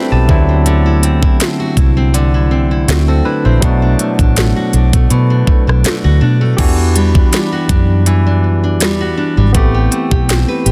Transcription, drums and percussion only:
0.29 kick loud
0.66 closed hi-hat medium
1.03 closed hi-hat medium
1.23 kick loud
1.40 snare loud
1.40 closed hi-hat medium
1.77 kick loud
1.77 closed hi-hat medium
2.14 closed hi-hat medium
2.88 snare loud
2.88 closed hi-hat medium
3.62 kick loud
3.62 closed hi-hat medium
3.99 closed hi-hat medium
4.19 kick loud
4.19 closed hi-hat soft
4.36 snare loud
4.36 closed hi-hat medium
4.73 closed hi-hat soft
4.93 kick loud
4.93 closed hi-hat medium
5.10 closed hi-hat medium
5.47 kick medium
5.69 cross-stick medium
5.84 snare loud
5.84 closed hi-hat medium
6.58 kick loud
6.58 closed hi-hat medium
6.58 crash loud
6.96 closed hi-hat medium
7.15 kick loud
7.33 snare loud
7.33 closed hi-hat medium
7.69 kick medium
7.69 closed hi-hat medium
8.06 closed hi-hat medium
8.80 snare loud
8.80 closed hi-hat medium
9.54 kick loud
9.54 closed hi-hat medium
9.92 closed hi-hat medium
10.11 kick loud
10.29 snare loud
10.29 closed hi-hat medium
10.66 closed hi-hat medium

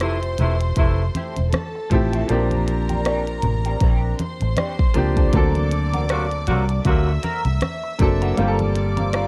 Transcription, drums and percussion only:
0.00 cross-stick medium
0.00 closed hi-hat medium
0.00 muted conga soft
0.23 closed hi-hat soft
0.38 closed hi-hat medium
0.38 high conga medium
0.38 low conga medium
0.61 closed hi-hat medium
0.76 kick medium
0.76 cross-stick soft
0.76 closed hi-hat medium
0.76 muted conga soft
1.15 closed hi-hat medium
1.15 muted conga soft
1.15 high conga medium
1.36 closed hi-hat soft
1.36 high conga soft
1.53 cross-stick loud
1.53 closed hi-hat medium
1.53 muted conga soft
1.53 high conga medium
1.91 kick medium
1.91 closed hi-hat medium
1.91 muted conga soft
1.91 low conga medium
2.13 closed hi-hat medium
2.29 closed hi-hat medium
2.51 closed hi-hat soft
2.51 high conga medium
2.68 closed hi-hat medium
2.89 closed hi-hat soft
2.89 high conga medium
3.05 cross-stick medium
3.05 closed hi-hat medium
3.05 muted conga soft
3.27 closed hi-hat soft
3.42 closed hi-hat medium
3.42 muted conga soft
3.42 high conga medium
3.42 low conga medium
3.65 closed hi-hat medium
3.81 kick medium
3.81 cross-stick soft
3.81 closed hi-hat medium
3.81 muted conga soft
4.19 closed hi-hat medium
4.19 muted conga soft
4.19 high conga medium
4.40 closed hi-hat soft
4.40 high conga soft
4.57 cross-stick loud
4.57 closed hi-hat medium
4.57 muted conga soft
4.57 high conga medium
4.79 kick loud
4.94 closed hi-hat medium
4.94 low conga medium
5.17 kick medium
5.17 closed hi-hat medium
5.33 kick loud
5.33 closed hi-hat medium
5.55 closed hi-hat soft
5.55 high conga medium
5.71 closed hi-hat medium
5.71 muted conga soft
5.93 closed hi-hat soft
5.93 high conga medium
6.09 cross-stick loud
6.09 closed hi-hat medium
6.09 muted conga soft
6.31 closed hi-hat soft
6.47 closed hi-hat medium
6.47 muted conga soft
6.47 high conga medium
6.47 low conga medium
6.69 closed hi-hat soft
6.85 kick medium
6.85 cross-stick soft
6.85 closed hi-hat medium
6.85 muted conga soft
7.23 closed hi-hat medium
7.23 high conga medium
7.45 closed hi-hat soft
7.45 high conga soft
7.61 cross-stick loud
7.61 closed hi-hat medium
7.61 muted conga soft
7.61 high conga medium
7.99 kick medium
7.99 closed hi-hat medium
7.99 muted conga soft
7.99 low conga medium
8.22 closed hi-hat soft
8.37 closed hi-hat medium
8.59 closed hi-hat soft
8.59 high conga medium
8.75 closed hi-hat medium
8.75 muted conga soft
8.97 closed hi-hat soft
8.97 high conga medium
9.13 cross-stick loud
9.13 closed hi-hat medium
9.13 muted conga soft

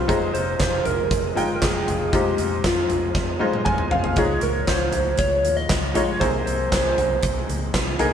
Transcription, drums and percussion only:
0.09 kick loud
0.09 closed hi-hat medium
0.35 closed hi-hat medium
0.59 kick loud
0.59 snare medium
0.59 clap medium
0.59 closed hi-hat medium
0.85 closed hi-hat medium
0.85 floor tom medium
1.11 kick loud
1.11 closed hi-hat medium
1.37 closed hi-hat medium
1.62 kick loud
1.62 snare medium
1.62 clap medium
1.62 closed hi-hat medium
1.88 closed hi-hat medium
1.88 floor tom medium
2.13 kick loud
2.13 closed hi-hat medium
2.38 closed hi-hat medium
2.64 kick loud
2.64 snare loud
2.64 clap medium
2.64 closed hi-hat medium
2.90 closed hi-hat medium
2.90 floor tom medium
3.15 kick loud
3.15 snare soft
3.53 high tom medium
3.65 kick medium
3.65 mid tom medium
3.78 mid tom medium
3.91 floor tom medium
4.04 floor tom medium
4.16 kick loud
4.16 closed hi-hat medium
4.41 closed hi-hat medium
4.67 kick loud
4.67 snare medium
4.67 clap medium
4.67 closed hi-hat medium
4.92 closed hi-hat medium
4.92 floor tom medium
5.18 kick loud
5.18 closed hi-hat medium
5.45 closed hi-hat medium
5.69 kick loud
5.69 snare loud
5.69 clap medium
5.69 closed hi-hat medium
5.95 closed hi-hat medium
5.95 floor tom medium
6.21 kick loud
6.21 closed hi-hat medium
6.47 closed hi-hat medium
6.72 kick loud
6.72 snare loud
6.72 clap medium
6.72 closed hi-hat medium
6.98 closed hi-hat medium
6.98 floor tom medium
7.23 kick loud
7.23 closed hi-hat medium
7.49 closed hi-hat medium
7.74 kick loud
7.74 snare loud
7.74 clap medium
7.74 closed hi-hat medium
7.99 closed hi-hat medium
7.99 floor tom medium

